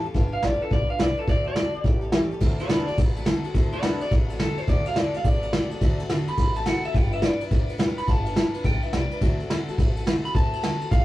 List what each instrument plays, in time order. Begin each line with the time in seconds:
0.04 steel-string acoustic guitar G3 C#4 G4 A4, muted upright bass stroke
0.14 upright bass G1, steel-string acoustic guitar G3 D4 F4 B4, kick, open hi-hat
0.32 steel-string acoustic guitar D4 F4 B4, clean electric guitar F5, muted upright bass stroke
0.43 upright bass A1, steel-string acoustic guitar G3 D4 F4 B4, clean electric guitar D5, snare
0.60 steel-string acoustic guitar D4 F4 B4, clean electric guitar A4, muted upright bass stroke
0.70 upright bass B1, steel-string acoustic guitar G3 D4 F4 B4, clean electric guitar D5, kick, open hi-hat
0.89 steel-string acoustic guitar D4 F4 B4, clean electric guitar F5, muted upright bass stroke
0.99 upright bass C2, steel-string acoustic guitar G3 D4 F4 B4, clean electric guitar D5, snare, open hi-hat
1.17 steel-string acoustic guitar D4 F4 B4, clean electric guitar A4, muted upright bass stroke
1.27 upright bass D2, steel-string acoustic guitar D3 A3 C4 F#4 A4, clean electric guitar D5, kick, open hi-hat
1.45 steel-string acoustic guitar C4 F#4 A4, clean electric guitar D5
1.56 steel-string acoustic guitar D3 A3 C4 F#4 A4, snare, open hi-hat
1.73 steel-string acoustic guitar C4 F#4 A4, muted upright bass stroke
1.84 upright bass A1, steel-string acoustic guitar G3 C#4 G4 A4, kick, open hi-hat
2.01 steel-string acoustic guitar G3 C#4 G4 A4
2.12 steel-string acoustic guitar A2 E3 G3 C#4 G4 A4, snare
2.31 steel-string acoustic guitar G3 C#4 G4 A4, muted upright bass stroke
2.40 upright bass D2, steel-string acoustic guitar D3 A3 C4 F#4 A4, kick, crash
2.59 steel-string acoustic guitar C4 F#4 A4, clean electric guitar F#4 D5, ride
2.69 steel-string acoustic guitar D3 A3 C4 F#4 A4, clean electric guitar D4 B4, snare, ride
2.87 steel-string acoustic guitar C4 F#4 A4, clean electric guitar D5, muted upright bass stroke, ride
2.97 upright bass A1, steel-string acoustic guitar A3 C4 F#4 A4, kick, ride
3.15 steel-string acoustic guitar C4 F#4 A4, ride
3.25 steel-string acoustic guitar D3 A3 C4 F#4 A4, snare, ride
3.43 steel-string acoustic guitar C4 F#4 A4, muted upright bass stroke, ride
3.54 upright bass D2, steel-string acoustic guitar D3 A3 C4 F#4 A4, kick, ride
3.72 steel-string acoustic guitar C4 F#4 A4, clean electric guitar F#4 D5, ride
3.82 steel-string acoustic guitar D3 A3 C4 F#4 A4, clean electric guitar D4 B4, snare, ride
4.00 steel-string acoustic guitar C4 F#4 A4, clean electric guitar D5, muted upright bass stroke, ride
4.10 upright bass A1, steel-string acoustic guitar A3 C4 F#4 A4, kick, ride
4.29 steel-string acoustic guitar C4 F#4 A4, ride
4.39 steel-string acoustic guitar D3 A3 C4 F#4 A4, clean electric guitar A4, snare, ride
4.58 steel-string acoustic guitar C4 F#4 A4, clean electric guitar C5, muted upright bass stroke, ride
4.67 upright bass D2, steel-string acoustic guitar D3 A3 C4 F#4 A4, clean electric guitar D5, kick, ride
4.85 steel-string acoustic guitar C4 F#4 A4, clean electric guitar F5, ride
4.96 steel-string acoustic guitar D3 A3 C4 F#4 A4, clean electric guitar D5, snare, ride
5.14 steel-string acoustic guitar C4 F#4 A4, clean electric guitar F5, muted upright bass stroke, ride
5.24 upright bass A1, steel-string acoustic guitar A3 C4 F#4 A4, clean electric guitar D5, kick, ride
5.42 steel-string acoustic guitar C4 F#4 A4, ride
5.53 steel-string acoustic guitar D3 A3 C4 F#4 A4, snare, ride
5.70 steel-string acoustic guitar C4 F#4 A4, muted upright bass stroke, ride
5.81 upright bass D2, steel-string acoustic guitar D3 A3 C4 F#4 A4, kick, ride
5.98 steel-string acoustic guitar C4 F#4 A4, ride
6.09 steel-string acoustic guitar D3 A3 C4 F#4 A4, snare, ride
6.27 steel-string acoustic guitar C4 F#4 A4, clean electric guitar B5, muted upright bass stroke, ride
6.37 upright bass A1, steel-string acoustic guitar A3 C4 F#4 A4, kick, ride
6.55 steel-string acoustic guitar C4 F#4 A4, clean electric guitar A5, ride
6.65 steel-string acoustic guitar D3 A3 C4 F#4 A4, clean electric guitar F#5, snare, ride
6.84 steel-string acoustic guitar C4 F#4 A4, clean electric guitar E5, muted upright bass stroke, ride
6.94 upright bass G1, steel-string acoustic guitar G3 D4 F4 B4, clean electric guitar G5, kick, ride
7.12 steel-string acoustic guitar D4 F4 B4, clean electric guitar E5, ride
7.22 steel-string acoustic guitar G3 D4 F4 B4, clean electric guitar D5, snare, ride
7.40 steel-string acoustic guitar D4 F4 B4, muted upright bass stroke, ride
7.50 upright bass D2, steel-string acoustic guitar G3 D4 F4 B4, kick, ride
7.68 steel-string acoustic guitar D4 F4 B4, ride
7.78 steel-string acoustic guitar G3 D4 F4 B4, snare, ride
7.97 steel-string acoustic guitar D4 F4 B4, clean electric guitar B5, muted upright bass stroke, ride
8.07 upright bass G1, steel-string acoustic guitar G3 D4 F4 B4, clean electric guitar A5, kick, ride
8.25 steel-string acoustic guitar D4 F4 B4, ride
8.36 steel-string acoustic guitar G3 D4 F4 B4, snare, ride
8.54 steel-string acoustic guitar D4 F4 B4, muted upright bass stroke, ride
8.64 upright bass B1, steel-string acoustic guitar G3 D4 F4, clean electric guitar G5, kick, ride
8.82 steel-string acoustic guitar D4 F4 B4, clean electric guitar E5, muted upright bass stroke, ride
8.92 upright bass C2, steel-string acoustic guitar G3 D4 F4 B4, clean electric guitar D5, snare, ride
9.11 steel-string acoustic guitar D4 F4 B4, muted upright bass stroke, ride
9.21 upright bass D2, steel-string acoustic guitar D3 A3 C4 F#4 A4, kick, ride
9.40 steel-string acoustic guitar C4 F#4 A4, ride
9.50 steel-string acoustic guitar D3 A3 C4 F#4 A4, snare, ride
9.67 steel-string acoustic guitar F#4 A4, muted upright bass stroke, ride
9.71 steel-string acoustic guitar C4
9.78 upright bass A1, steel-string acoustic guitar A3 C4 F#4 A4, kick, ride
9.96 steel-string acoustic guitar C4 F#4 A4, ride
10.06 steel-string acoustic guitar D3 A3 C4 F#4 A4, snare, ride
10.24 steel-string acoustic guitar C4 F#4 A4, clean electric guitar B5, muted upright bass stroke, ride
10.34 upright bass D2, steel-string acoustic guitar D3 A3 C4 F#4 A4, clean electric guitar A5, kick, ride
10.52 steel-string acoustic guitar C4 F#4 A4, ride
10.63 steel-string acoustic guitar D3 A3 C4 F#4 A4, snare, ride
10.81 steel-string acoustic guitar C4 F#4 A4, muted upright bass stroke, ride
10.91 upright bass A1, steel-string acoustic guitar A3 C4 F#4 A4, clean electric guitar F5, kick, ride